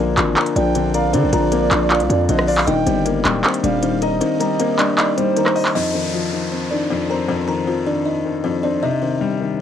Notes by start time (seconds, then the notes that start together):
Already playing: A#1 D3 F3 A#4 A#5
0.00 A#3
0.17 G#1 F3, clap, closed hi-hat
0.36 A#4 A#5, clap, closed hi-hat
0.46 closed hi-hat
0.56 A#1 F3 D4 D5 G5, closed hi-hat
0.75 D3 C4 C5, closed hi-hat
0.94 A#4 D5 F5 A#5, closed hi-hat
1.13 D3 C4 C5 D5, closed hi-hat
1.23 A#1
1.33 A#1 F3 A#4 A#5, closed hi-hat
1.52 A#3 C4 C5, closed hi-hat
1.71 A#1 F3 D4 D5, clap, closed hi-hat
1.90 F4 F5, clap, closed hi-hat
2.00 C2, closed hi-hat
2.10 F2 F3, closed hi-hat
2.29 A#1 D3 C4 C5 D#5, closed hi-hat
2.39 cross-stick
2.47 D4 D5 F5, open hi-hat
2.58 clap
2.67 D#1 D#3 D#4 D#5 G5, closed hi-hat
2.86 G1 G3 C4 C5, closed hi-hat
3.05 A#3, closed hi-hat
3.25 D1 G3, clap, closed hi-hat
3.44 C4 C5, clap, closed hi-hat
3.54 closed hi-hat
3.63 D#1 G3 D4 D5 F5, closed hi-hat
3.82 D#3 C4 C5, closed hi-hat
4.02 A#4 D#5 A#5, closed hi-hat
4.21 D#3 C4 C5 D#5, closed hi-hat
4.40 G3 A#4 A#5, closed hi-hat
4.60 A#3 C4 C5, closed hi-hat
4.79 G3 D4 D5, clap, closed hi-hat
4.98 D#4 D5 D#5, clap, closed hi-hat
5.17 G3 C5, closed hi-hat
5.36 D#3 A#4 A#5, closed hi-hat
5.46 cross-stick, clap
5.55 D#5, open hi-hat
5.65 clap
5.75 F2 D#4 D#5, downlifter
5.94 D#3 C4 C5
6.14 F3
6.33 D#3
6.52 C4 C5
6.71 D#3 D4 D5
6.90 F2 C4 C5
7.10 C4 A#4 A#5
7.28 F2 C4 C5
7.48 D#3 A#4 A#5
7.67 F3 C4 C5
7.86 D#3 D4 D5
8.06 D#4 D#5
8.25 D#3
8.44 F2 C4 C5
8.63 C4 D4 D5
8.83 C3 D#4 D#5
9.02 D#3 C4 C5
9.21 G3
9.41 D#3